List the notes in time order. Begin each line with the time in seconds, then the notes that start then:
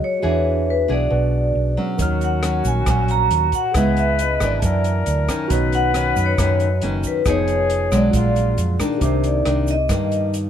Already playing: F#3 F#4 G#4 C#5 D#5
0.04 C#5
0.20 E3 D4 F#4 G#4 B4
0.24 E2 D4
0.70 B4
0.88 B1 D4 F#4 G#4
0.92 D5
1.10 B1 B2
1.55 B1
1.77 F#3 C#4
1.98 D#2 D#3 F#4 A#4 C#5, kick, closed hi-hat, shaker
2.02 F6
2.21 F#5, closed hi-hat, shaker
2.43 F#3 C#4, cross-stick, closed hi-hat, shaker
2.65 A#1 G#5, kick, closed hi-hat, shaker
2.86 A#1 A#2 F#3 C#4, kick, cross-stick, closed hi-hat, shaker
3.08 A#5, closed hi-hat, shaker
3.31 D#2, closed hi-hat
3.52 F#5, kick, closed hi-hat, shaker
3.72 C#2 C#3 G#3 G#4 B4 D#5, kick, cross-stick, closed hi-hat, shaker
3.76 B3 E4 E5
3.97 E5, closed hi-hat, shaker
4.19 D#5, closed hi-hat, shaker
4.40 G#1 E3 A#3 D4 D5, kick, cross-stick, closed hi-hat, shaker
4.60 F#2 A#4 D5 A5, kick, closed hi-hat, shaker
4.66 E5
4.84 closed hi-hat, shaker
5.06 D2, closed hi-hat, shaker
5.28 D#3 C#4, kick, cross-stick, closed hi-hat, shaker
5.48 B1 B2 F#4 B4 A#5, kick, closed hi-hat, shaker
5.52 C#5 D#5
5.72 F#5, closed hi-hat, shaker
5.94 D#3 C#4, cross-stick, closed hi-hat, shaker
6.16 F#2, kick, closed hi-hat, shaker
6.26 C#5
6.38 F#2 D#3 A#3 C#4, kick, cross-stick, closed hi-hat, shaker
6.60 closed hi-hat, shaker
6.81 F#1 D#3 A#3 C#4, closed hi-hat
7.03 B4, kick, closed hi-hat, shaker
7.25 F1 F3 B3 D#4 G#4 B4, kick, cross-stick, closed hi-hat, shaker
7.29 C#5 D#5
7.48 closed hi-hat, shaker
7.70 closed hi-hat
7.92 B1 F#3 G#3 D4 D5, kick, cross-stick, closed hi-hat, shaker
8.11 A#1 A#2 F4 G#4, kick, closed hi-hat, shaker
8.15 D5 F5
8.36 closed hi-hat, shaker
8.58 F2, closed hi-hat, shaker
8.79 D#3 A#3 D4, kick, cross-stick, closed hi-hat, shaker
8.98 C2 G4 A#4, kick, closed hi-hat, shaker
9.02 C3 D#4 C5 D6
9.24 D5, closed hi-hat, shaker
9.45 C2 D#3 A#3 D4, cross-stick, closed hi-hat
9.67 D#5, closed hi-hat, shaker
9.89 G2 D#3 A#3, kick, cross-stick, closed hi-hat, shaker
10.12 closed hi-hat, shaker
10.34 closed hi-hat, shaker